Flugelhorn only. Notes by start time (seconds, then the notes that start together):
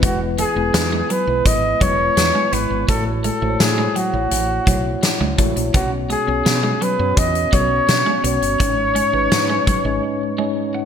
0.04 F#4
0.40 G#4
1.11 B4
1.46 D#5
1.82 C#5
2.53 B4
2.89 A4
3.24 A4
3.60 G#4
3.96 F#4
5.75 F#4
6.11 G#4
6.83 B4
7.18 D#5
7.54 C#5
8.25 C#5